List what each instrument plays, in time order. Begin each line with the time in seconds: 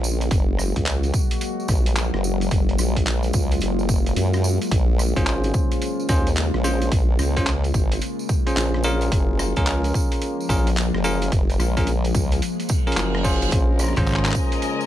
Already playing: wobble bass A#1, ambient pad C#3 G#3 A#3 F4
0.04 tambourine
0.21 closed hi-hat, tambourine
0.31 wobble bass F#1, ambient pad F#3 F#4, kick, closed hi-hat, tambourine
0.59 cross-stick, tambourine
0.76 wobble bass C#2, kick, closed hi-hat, tambourine
0.86 clap, closed hi-hat, tambourine
1.03 closed hi-hat, tambourine
1.14 kick, tambourine
1.31 closed hi-hat, tambourine
1.41 closed hi-hat, tambourine
1.60 tambourine
1.68 wobble bass A#1, kick, cross-stick, tambourine
1.86 closed hi-hat, tambourine
1.96 clap, closed hi-hat, tambourine
2.14 wobble bass F#1, cross-stick
2.24 tambourine
2.41 closed hi-hat, tambourine
2.51 wobble bass F#1, ambient pad F4, kick, closed hi-hat, tambourine
2.69 closed hi-hat
2.78 wobble bass A#1, cross-stick, tambourine
2.96 kick, closed hi-hat, tambourine
3.06 clap, closed hi-hat, tambourine
3.23 closed hi-hat, tambourine
3.33 wobble bass C#2, kick, tambourine
3.51 closed hi-hat, tambourine
3.60 wobble bass F#1, closed hi-hat, tambourine
3.79 tambourine
3.89 kick, tambourine
4.06 closed hi-hat, tambourine
4.16 wobble bass F#2, closed hi-hat, tambourine
4.33 cross-stick, tambourine
4.44 tambourine
4.62 closed hi-hat, tambourine
4.71 wobble bass A#1, ambient pad C#3 F4, kick, closed hi-hat, tambourine
4.99 cross-stick, tambourine
5.16 wobble bass G#1, tine electric piano C#4 F4 G#4 C5, kick, closed hi-hat, tambourine
5.26 clap, closed hi-hat, tambourine
5.44 closed hi-hat, tambourine
5.54 kick, tambourine
5.71 closed hi-hat, tambourine
5.82 closed hi-hat, tambourine
6.00 tambourine
6.09 wobble bass D#2, tine electric piano C#4 F4 G#4 C5, kick, cross-stick, tambourine
6.27 closed hi-hat, tambourine
6.36 clap, closed hi-hat, tambourine
6.54 wobble bass A#1, cross-stick
6.64 tine electric piano C#4 F4 G#4 C5, tambourine
6.82 closed hi-hat, tambourine
6.92 wobble bass A#1, kick, closed hi-hat, tambourine
7.19 wobble bass C#2, cross-stick, tambourine
7.37 tine electric piano C#4 F4 G#4 C5, kick, closed hi-hat, tambourine
7.46 clap, closed hi-hat, tambourine
7.64 closed hi-hat, tambourine
7.74 wobble bass G#1, kick, tambourine
7.92 closed hi-hat, tambourine
8.01 closed hi-hat, tambourine
8.19 tambourine
8.29 kick, tambourine
8.47 tine electric piano C#4 F4 G#4 C5, closed hi-hat, tambourine
8.57 wobble bass A#1, clap, closed hi-hat, tambourine
8.74 cross-stick
8.83 tine electric piano C#4 F4 G#4 A#4, tambourine
9.01 closed hi-hat, tambourine
9.11 wobble bass F#1, ambient pad F3 G#3 A#3, kick, closed hi-hat, tambourine
9.39 cross-stick, tambourine
9.56 wobble bass C#2, tine electric piano C#4 F4 G#4 A#4, kick, closed hi-hat, tambourine
9.67 clap, closed hi-hat, tambourine
9.84 closed hi-hat, tambourine
9.94 kick, tambourine
10.12 closed hi-hat, tambourine
10.21 closed hi-hat, tambourine
10.40 tambourine
10.49 wobble bass A#1, tine electric piano C#4 F4 G#4 A#4, kick, cross-stick, tambourine
10.67 closed hi-hat, tambourine
10.77 clap, closed hi-hat, tambourine
10.94 wobble bass F#1, cross-stick
11.04 tine electric piano C#4 F4 G#4 A#4, tambourine
11.22 closed hi-hat, tambourine
11.32 wobble bass F#1, kick, closed hi-hat, tambourine
11.50 closed hi-hat, tambourine
11.59 wobble bass A#1, cross-stick, tambourine
11.77 tine electric piano C#4 F4 G#4 A#4, kick, closed hi-hat, tambourine
11.87 closed hi-hat, tambourine
12.05 closed hi-hat, tambourine
12.14 wobble bass C#2, kick, tambourine
12.32 closed hi-hat, tambourine
12.42 closed hi-hat, tambourine, reverse cymbal
12.60 closed hi-hat, tambourine
12.69 kick, tambourine
12.87 tine electric piano C#4 F4 G#4 A#4, tambourine
12.92 closed hi-hat
12.97 wobble bass F#1, clap, closed hi-hat, tambourine
13.15 cross-stick
13.24 tine electric piano C#4 F4 G#4 C5, kick, tambourine
13.42 closed hi-hat, tambourine
13.52 wobble bass A#1, ambient pad C#3 F4, kick, closed hi-hat, tambourine
13.71 string section A#4
13.79 cross-stick, tambourine
13.84 cross-stick
13.88 cross-stick
13.93 string section D#5, cross-stick, tambourine
13.97 slap bass G#1, tine electric piano C#4 F4 G#4 C5, kick, cross-stick, closed hi-hat
14.00 cross-stick
14.02 cross-stick
14.05 cross-stick, clap, tambourine
14.13 clap
14.16 clap
14.25 clap, closed hi-hat, tambourine
14.31 string section G#5, kick, clap, tambourine
14.52 closed hi-hat, tambourine
14.62 closed hi-hat, tambourine
14.81 tambourine